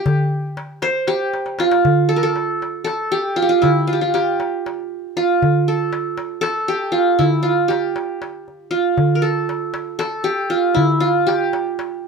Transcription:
Already playing: qanun G4
0.06 darbuka dum
0.57 darbuka tek
0.82 qanun C5, darbuka tek
1.07 qanun G4, darbuka tek
1.34 darbuka tek
1.46 darbuka ka
1.59 qanun F4, darbuka tek
1.71 darbuka ka
1.85 darbuka dum
2.09 qanun A4
2.16 qanun A#4
2.23 qanun A4
2.36 darbuka tek
2.62 darbuka tek
2.84 qanun A4, darbuka tek
3.12 qanun G4
3.36 qanun F4
3.42 qanun G4
3.49 qanun F4
3.62 qanun E4, darbuka dum
3.87 qanun F4
3.93 qanun G4
4.01 qanun F4
4.14 qanun G4, darbuka tek
4.40 darbuka tek
4.66 darbuka tek
5.17 qanun F4
5.42 darbuka dum
5.68 qanun A4
5.93 darbuka tek
6.18 darbuka tek
6.41 qanun A4, darbuka tek
6.68 qanun G4
6.92 qanun F4
7.19 qanun E4, darbuka dum
7.43 qanun F4
7.68 qanun G4, darbuka tek
7.96 darbuka tek
8.22 darbuka tek
8.48 darbuka ka
8.71 qanun F4, darbuka ka
8.97 darbuka dum
9.15 qanun A#4
9.22 qanun A4
9.49 darbuka tek
9.74 darbuka tek
9.99 qanun A4, darbuka tek
10.24 qanun G4
10.50 qanun F4
10.74 qanun E4, darbuka dum
11.00 qanun F4
11.27 qanun G4, darbuka tek
11.53 darbuka tek
11.79 darbuka tek

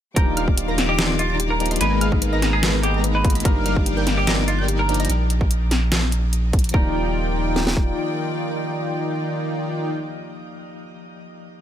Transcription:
0.14 sub bass D#1, supersaw synth D#3 D#4 F4 D5 G5, tine electric piano F3 A#3 D4 D#4, synth arpeggio sound D4, string section G4 F5 D6, clean electric guitar A#4, synth pluck G6, kick, closed hi-hat
0.18 tine electric piano G4
0.37 supersaw synth D#3 D#4 F4 D5 F5, synth arpeggio sound D#4, synth pluck F6, closed hi-hat
0.48 synth arpeggio sound D4, kick
0.58 synth arpeggio sound G4, closed hi-hat
0.68 supersaw synth D#3 D#4 F4 D5 A#5, synth arpeggio sound A#4, synth pluck A#6
0.78 snare, closed hi-hat
0.89 clean electric guitar G4, synth arpeggio sound D#5
0.99 supersaw synth D#3 D#4 F4 D5 C6, synth arpeggio sound G4, synth pluck C7, snare, closed hi-hat
1.09 synth arpeggio sound G4
1.19 synth arpeggio sound D#4, clean electric guitar F4, closed hi-hat
1.30 supersaw synth D#3 D#4 F4 D5 A#5, synth pluck A#6
1.40 synth arpeggio sound G4, closed hi-hat
1.50 synth arpeggio sound A#4, clean electric guitar A#4
1.59 tine electric piano F3 A#3 D4 D#4 G4, synth arpeggio sound D4, closed hi-hat
1.66 closed hi-hat
1.71 supersaw synth D#3 D#4 F4 D5 C6, synth arpeggio sound D#5, synth pluck C7, closed hi-hat
1.76 tine electric piano G#3 A#3, closed hi-hat
1.81 sub bass G#1, supersaw synth G#3 D#4 A#4 B4 G#5, tine electric piano B3 D#4 G#4, synth arpeggio sound D#4, string section G#4 A#5, clean electric guitar B4, synth pluck G#6, closed hi-hat
2.01 supersaw synth G#3 D#4 A#4 B4 F5, synth arpeggio sound G#4, synth pluck F6, closed hi-hat
2.12 synth arpeggio sound D#4, kick
2.22 synth arpeggio sound B4, closed hi-hat
2.33 supersaw synth G#3 D#4 A#4 B4 A#5, synth arpeggio sound D#5, synth pluck A#6
2.42 snare, closed hi-hat
2.53 clean electric guitar G#4, synth arpeggio sound A#5
2.63 supersaw synth G#3 D#4 A#4 B4 B5, synth arpeggio sound B4, synth pluck B6, snare, closed hi-hat
2.74 synth arpeggio sound B4
2.83 tine electric piano G#3 A#3 B3 D#4 G#4, clean electric guitar G4, synth arpeggio sound G#4, closed hi-hat
2.94 supersaw synth G#3 D#4 A#4 B4 A#5, synth pluck A#6
3.04 synth arpeggio sound B4, closed hi-hat
3.15 clean electric guitar B4, synth arpeggio sound D#5
3.24 tine electric piano G#3 A#3 B3 D#4 F4, synth arpeggio sound D#4, kick, closed hi-hat
3.30 closed hi-hat
3.35 supersaw synth G#3 D#4 A#4 B4 B5, synth arpeggio sound A#5, synth pluck B6, closed hi-hat
3.40 tine electric piano F3 A#3, closed hi-hat
3.45 sub bass G1, supersaw synth G3 D#4 A#4 D5 F5, tine electric piano D4 D#4 G4, synth arpeggio sound D4, string section G4 F5 D6, clean electric guitar A#4, synth pluck F6, kick, closed hi-hat
3.66 supersaw synth G3 D#4 A#4 D5 F5, synth arpeggio sound D#4, synth pluck F6, closed hi-hat
3.76 synth arpeggio sound D4, kick
3.86 synth arpeggio sound G4, closed hi-hat
3.97 supersaw synth G3 D#4 A#4 D5 G5, synth arpeggio sound A#4, synth pluck G6
4.07 snare, closed hi-hat
4.18 clean electric guitar G4, synth arpeggio sound D#5
4.27 supersaw synth G3 D#4 A#4 D5 A#5, synth arpeggio sound G4, synth pluck A#6, snare, closed hi-hat
4.38 synth arpeggio sound G4
4.48 synth arpeggio sound D#4, clean electric guitar F4, closed hi-hat
4.59 supersaw synth G3 D#4 A#4 D5 G5, synth pluck G6
4.68 synth arpeggio sound G4, closed hi-hat
4.79 clean electric guitar A#4, synth arpeggio sound A#4
4.88 tine electric piano F3 A#3 D4 D#4 G4, synth arpeggio sound D4, closed hi-hat
4.94 closed hi-hat
5.00 supersaw synth G3 D#4 A#4 D5 A#5, synth arpeggio sound D#5, synth pluck A#6, closed hi-hat
5.05 closed hi-hat
5.10 sub bass A#1, closed hi-hat
5.30 closed hi-hat
5.41 kick
5.51 closed hi-hat
5.71 snare, closed hi-hat
5.92 snare, closed hi-hat
6.12 closed hi-hat
6.33 closed hi-hat
6.53 kick, closed hi-hat
6.59 closed hi-hat
6.64 closed hi-hat
6.69 tine electric piano F3 A#3, closed hi-hat
6.74 sub bass D#1, supersaw synth D#3 D#4 F4 D5 G5, synth arpeggio sound D4, tine electric piano D#4 G4 D5, string section F4 D5 G5, clean electric guitar A#4, synth pluck G6, kick
7.56 snare
7.67 snare
7.77 kick

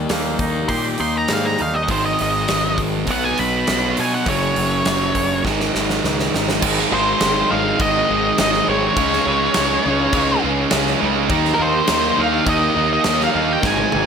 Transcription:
Already playing: clean electric guitar D#3 G3, distorted electric guitar D#3 A#3 D#4
0.09 picked electric bass D#2, clean electric guitar A#3, snare, open hi-hat
0.39 picked electric bass D#2, clean electric guitar D#4, kick, open hi-hat
0.69 picked electric bass A#2, clean electric guitar G4, lead electric guitar C6, kick, open hi-hat
0.98 picked electric bass D#2, clean electric guitar D#4, lead electric guitar C6, open hi-hat
1.18 lead electric guitar A#5
1.28 picked electric bass G#2, clean electric guitar G3, snare, open hi-hat
1.33 lead electric guitar F5
1.46 lead electric guitar A#5
1.59 picked electric bass D#2, clean electric guitar D#4, lead electric guitar F5, open hi-hat
1.75 lead electric guitar D#5
1.88 picked electric bass G#1, distorted electric guitar G#2 D#3 G#3, lead electric guitar C5, kick, open hi-hat
2.06 lead electric guitar D#5
2.19 picked electric bass G#1, lead electric guitar D#5, open hi-hat
2.48 picked electric bass G#1, snare, open hi-hat
2.78 kick, open hi-hat
3.05 picked electric bass B1, distorted electric guitar B2 F#3 B3, kick, open hi-hat
3.12 lead electric guitar F#5
3.24 lead electric guitar G#5
3.38 picked electric bass B1, lead electric guitar B5, open hi-hat
3.67 picked electric bass B1, snare, open hi-hat
3.97 picked electric bass B2, lead electric guitar G#5, open hi-hat
4.15 lead electric guitar F#5
4.25 picked electric bass F#1, distorted electric guitar F#2 C#3 F#3, lead electric guitar C#5, kick, open hi-hat
4.56 picked electric bass F#1, open hi-hat
4.85 picked electric bass F#1, snare, open hi-hat
5.15 picked electric bass F#1, kick, open hi-hat
5.44 picked electric bass G#1, distorted electric guitar G#2 D#3 G#3, kick, snare
5.60 snare
5.75 picked electric bass G#1, snare
5.90 snare
6.04 picked electric bass C#2, snare
6.19 snare
6.34 picked electric bass G#1, snare
6.49 snare
6.60 picked electric bass G#1, distorted electric guitar G#2 D#3 G#3, tonewheel organ D#4 G#4 C5 G#5, kick, crash
6.79 snare
6.91 picked electric bass G#1, distorted electric guitar G#2 D#3 G#3, lead electric guitar C5
7.20 picked electric bass G#1, distorted electric guitar G#2 D#3 G#3, snare, crash
7.49 picked electric bass G#1, distorted electric guitar G#2 D#3 G#3, lead electric guitar F5
7.78 picked electric bass G#1, distorted electric guitar G#2 D#3 G#3, lead electric guitar D#5, kick, crash
8.08 picked electric bass G#1, distorted electric guitar G#2 D#3 G#3
8.38 picked electric bass G#1, distorted electric guitar G#2 D#3 G#3, lead electric guitar D#5, snare, crash
8.53 snare
8.68 picked electric bass G#1, distorted electric guitar G#2 D#3 G#3, lead electric guitar C#5
8.96 picked electric bass C#2, distorted electric guitar C#3 G#3 C#4, tonewheel organ G#4 C#5 F5, kick, crash
9.13 snare
9.26 picked electric bass C#2, distorted electric guitar C#3 G#3 C#4
9.54 picked electric bass C#2, distorted electric guitar C#3 G#3 C#4, snare, crash
9.85 picked electric bass C#2, distorted electric guitar C#3 G#3 C#4
10.13 picked electric bass C#2, distorted electric guitar C#3 G#3 C#4, kick, crash
10.42 picked electric bass C#2, distorted electric guitar C#3 G#3 C#4
10.70 picked electric bass C#2, distorted electric guitar C#3 G#3 C#4, snare, crash
10.87 snare
11.00 picked electric bass C#2, distorted electric guitar C#3 G#3 C#4
11.30 picked electric bass D#2, distorted electric guitar D#3 A#3 D#4, tonewheel organ D#4 G4 A#4, kick, crash
11.45 snare
11.54 distorted electric guitar D#3 A#3 D#4, lead electric guitar A#4
11.60 picked electric bass D#2, lead electric guitar C5
11.87 picked electric bass D#2, distorted electric guitar D#3 A#3 D#4, snare, crash
12.16 picked electric bass D#2, distorted electric guitar D#3 A#3 D#4
12.21 lead electric guitar F5
12.47 picked electric bass D#2, distorted electric guitar D#3 A#3 D#4, lead electric guitar D#5, kick, crash
12.75 picked electric bass D#2, distorted electric guitar D#3 A#3 D#4
12.93 lead electric guitar D#5
13.04 picked electric bass D#2, distorted electric guitar D#3 A#3 D#4, snare, crash
13.20 lead electric guitar F5, snare
13.34 picked electric bass D#2, distorted electric guitar D#3 A#3 D#4
13.53 lead electric guitar G5
13.62 picked electric bass G#1, distorted electric guitar G#2 D#3 G#3, tonewheel organ D#4 G#4 C5 G#5, kick, snare
13.67 lead electric guitar G#5
13.78 high tom
13.92 picked electric bass G#1, distorted electric guitar G#2 D#3 G#3, high tom

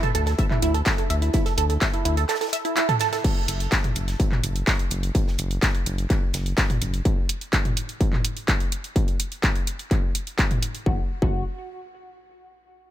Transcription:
0.03 synth arpeggio sound A4, closed hi-hat, mid tom
0.15 analog synth bass D2, synth arpeggio sound A4, closed hi-hat
0.26 synth arpeggio sound A4, snare, closed hi-hat
0.38 synth arpeggio sound E5, kick, closed hi-hat
0.51 synth arpeggio sound E4, clap, mid tom
0.62 analog synth bass D2, synth arpeggio sound E4, closed hi-hat
0.74 synth arpeggio sound A4, closed hi-hat
0.86 synth arpeggio sound A4, kick, snare, clap, closed hi-hat
0.98 synth arpeggio sound A4, closed hi-hat
1.10 analog synth bass D2, synth arpeggio sound E5, closed hi-hat
1.22 synth arpeggio sound E4, closed hi-hat
1.33 synth arpeggio sound E4, kick, closed hi-hat
1.46 synth arpeggio sound A4, snare, closed hi-hat
1.57 analog synth bass D2, synth arpeggio sound A4, closed hi-hat
1.70 synth arpeggio sound A4, closed hi-hat
1.81 synth arpeggio sound E5, kick, snare, clap, closed hi-hat
1.93 synth arpeggio sound E4, closed hi-hat
2.05 analog synth bass D2, synth arpeggio sound E4, closed hi-hat
2.17 synth arpeggio sound A4, closed hi-hat
2.29 synth arpeggio sound A4, snare, clap, closed hi-hat
2.35 snare, closed hi-hat
2.41 synth arpeggio sound A4, snare, closed hi-hat
2.47 snare, closed hi-hat
2.53 synth arpeggio sound E5, closed hi-hat
2.65 synth arpeggio sound E4, closed hi-hat
2.76 synth arpeggio sound E4, clap, closed hi-hat
2.89 synth arpeggio sound A4, closed hi-hat, mid tom
2.99 synth arpeggio sound A4, snare, closed hi-hat
3.13 synth arpeggio sound A4, snare, closed hi-hat
3.24 kick, closed hi-hat, crash
3.48 analog synth bass F#1, closed hi-hat
3.60 closed hi-hat
3.72 kick, snare, clap, closed hi-hat
3.84 closed hi-hat, mid tom
3.96 analog synth bass F#1, closed hi-hat
4.08 snare, closed hi-hat
4.20 kick, closed hi-hat
4.32 clap, mid tom
4.43 analog synth bass F#1, closed hi-hat
4.56 closed hi-hat
4.67 kick, snare, clap, closed hi-hat
4.79 closed hi-hat
4.91 analog synth bass F#1, closed hi-hat
5.03 closed hi-hat
5.15 kick, closed hi-hat
5.28 snare
5.38 analog synth bass F#1, closed hi-hat
5.51 closed hi-hat
5.62 kick, snare, clap, closed hi-hat
5.75 closed hi-hat
5.86 analog synth bass F#1, closed hi-hat
5.98 closed hi-hat
6.10 kick, clap, closed hi-hat
6.33 analog synth bass F#1, snare, closed hi-hat
6.46 closed hi-hat
6.57 kick, snare, clap, closed hi-hat
6.70 closed hi-hat, mid tom
6.82 analog synth bass F#1, closed hi-hat
6.94 closed hi-hat
7.05 kick, closed hi-hat
7.29 closed hi-hat
7.41 closed hi-hat
7.53 kick, clap, closed hi-hat
7.65 closed hi-hat, mid tom
7.77 closed hi-hat
7.89 closed hi-hat
8.01 kick, closed hi-hat
8.13 clap, mid tom
8.25 closed hi-hat
8.37 closed hi-hat
8.48 kick, clap, closed hi-hat
8.60 closed hi-hat
8.72 closed hi-hat
8.84 closed hi-hat
8.96 kick, closed hi-hat
9.08 closed hi-hat
9.20 closed hi-hat
9.32 closed hi-hat
9.43 kick, clap, closed hi-hat
9.56 closed hi-hat
9.67 closed hi-hat
9.79 closed hi-hat
9.91 kick, clap, closed hi-hat
10.15 closed hi-hat
10.27 closed hi-hat
10.39 kick, clap, closed hi-hat
10.51 closed hi-hat, mid tom
10.63 closed hi-hat
10.75 closed hi-hat
10.86 analog synth bass F#1, synth arpeggio sound F#4, kick
11.22 analog synth bass F#1, synth arpeggio sound F#4, kick

